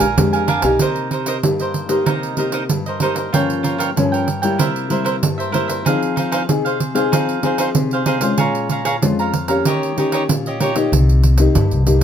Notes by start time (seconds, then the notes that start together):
Already playing: A#2
0.00 A#1 A#4 F5 G#5, pandeiro
0.17 F2 G#3 D4 G4, pandeiro
0.33 A#4 F5 G#5, pandeiro
0.48 D4 A#4 F5 G#5, pandeiro
0.62 B1 A#3 D#4 G4 A#4 F5 G#5, pandeiro
0.79 C3 D#4 A#4 C5 D#5, pandeiro
0.96 pandeiro
1.11 D#4 A#4 C5 D#5, pandeiro
1.26 D#4 A#4 C5 D#5, pandeiro
1.43 G2 A#3 D#4 G4, pandeiro
1.60 A#4 C5 D#5, pandeiro
1.74 pandeiro
1.89 A#3 D#4 G4 A#4 C5 D#5, pandeiro
2.06 C3 D#4 A#4 C5 D#5, pandeiro
2.23 pandeiro
2.37 A#3 D#4 G4 A#4 C5 D#5, pandeiro
2.52 D#4 A#4 C5 D#5, pandeiro
2.69 G2, pandeiro
2.86 A#4 C5 D#5, pandeiro
3.00 A#3 D#4 G4 A#4 C5 D#5, pandeiro
3.15 D#5, pandeiro
3.33 G2 F3 A#3 C#4 F4 A#4 C#5 G5, pandeiro
3.50 pandeiro
3.63 F4 A#4 C#5 G5, pandeiro
3.78 F4 A#4 C#5 G5, pandeiro
3.96 G2 F3 A#3 C#4, pandeiro
4.12 A#4 C#5 G5, pandeiro
4.28 pandeiro
4.42 G3 A#3 E4 A#4 C#5 G5, pandeiro
4.59 C3 E4 A#4 C5 E5, pandeiro
4.76 pandeiro
4.90 G3 A#3 E4 A#4 C5 E5, pandeiro
5.04 E4 A#4 C5 E5, pandeiro
5.23 G2, pandeiro
5.38 A#4 C5 E5, pandeiro
5.52 G3 A#3 E4 A#4 C5 E5, pandeiro
5.68 A#4 C5 E5, pandeiro
5.85 F3 C4 D#4 G#4 C5 F5, pandeiro
6.03 pandeiro
6.16 D#4 G#4 C5 F5, pandeiro
6.31 D#4 G#4 C5 F5, pandeiro
6.49 C3 C4 D#4 G#4, pandeiro
6.65 G#4 C5 F5, pandeiro
6.80 pandeiro
6.94 C4 D#4 G#4 C5 F5, pandeiro
7.12 F3 D#4 G#4 C5 F5, pandeiro
7.29 pandeiro
7.43 C4 D#4 G#4 C5 F5, pandeiro
7.58 D#4 G#4 C5 F5, pandeiro
7.75 C3, pandeiro
7.91 G#4 C5 F5, pandeiro
8.06 C4 D#4 G#4 C5 F5, pandeiro
8.21 G#3 C#4 F4 G#4 C5 F5, pandeiro
8.37 A#2 G#4 C#5 F5 A#5, pandeiro
8.55 pandeiro
8.70 G#4 C#5 F5 A#5, pandeiro
8.85 G#4 C#5 F5 A#5, pandeiro
9.02 F2 G#3 C#4 F4, pandeiro
9.19 C#5 F5 A#5, pandeiro
9.34 pandeiro
9.48 A#3 C#4 G4 C#5 F5 A#5, pandeiro
9.65 D#3 D#4 G4 C#5 D#5, pandeiro
9.83 pandeiro
9.96 A#3 C#4 D#4 G4 C#5 D#5, pandeiro
10.12 D#4 G4 C#5 D#5, pandeiro
10.28 A#2, pandeiro
10.46 G4 C#5 D#5, pandeiro
10.60 A#3 C#4 D#4 G4 C#5 D#5, pandeiro
10.75 A#3 D#4 G4 C#5 D#5, pandeiro
10.92 C2 C3, pandeiro
11.09 pandeiro
11.23 pandeiro
11.38 A#3 D#4 G4, pandeiro
11.55 G2, pandeiro
11.71 C2, pandeiro
11.86 A#3 D#4 G4, pandeiro